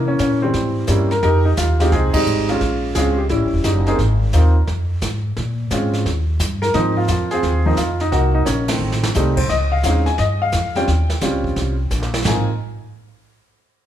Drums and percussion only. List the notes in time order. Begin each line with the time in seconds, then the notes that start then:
0.19 snare, hi-hat pedal
0.54 brush sweep, snare
0.87 snare, hi-hat pedal
1.11 snare
1.23 brush sweep, snare
1.57 snare, hi-hat pedal
1.80 snare
1.92 brush sweep, snare
2.14 kick, ride
2.26 hi-hat pedal
2.49 snare
2.61 brush sweep, snare
2.94 snare, hi-hat pedal
3.29 brush sweep, snare
3.64 snare, hi-hat pedal
3.86 snare
3.99 brush sweep, snare
4.33 snare, hi-hat pedal
4.67 brush sweep, snare
5.01 snare, hi-hat pedal
5.37 brush sweep, snare
5.70 snare, hi-hat pedal
5.93 snare
6.06 brush sweep, snare
6.39 snare, hi-hat pedal
6.62 snare
6.74 brush sweep, snare
7.08 snare, hi-hat pedal
7.31 snare
7.43 brush sweep, snare
7.77 snare, hi-hat pedal
8.00 snare
8.12 brush sweep, snare
8.46 snare, hi-hat pedal
8.68 snare, ride
8.92 snare
9.03 snare
9.14 snare, hi-hat pedal
9.37 kick, crash
9.49 brush sweep, snare
9.83 snare, hi-hat pedal
10.06 snare
10.18 brush sweep, snare
10.52 snare, hi-hat pedal
10.75 snare
10.88 brush sweep, snare
11.10 snare
11.21 snare, hi-hat pedal
11.44 kick
11.56 brush sweep, snare
11.90 snare, hi-hat pedal
12.03 snare
12.14 snare
12.25 snare, floor tom